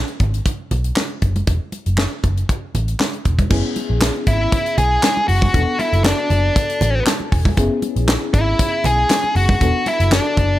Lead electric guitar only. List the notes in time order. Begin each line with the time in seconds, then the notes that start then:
4.28 E4
4.78 G#4
5.28 F#4
5.79 E4
6.05 D4
8.34 E4
8.86 G#4
9.36 F#4
9.88 E4
10.13 D4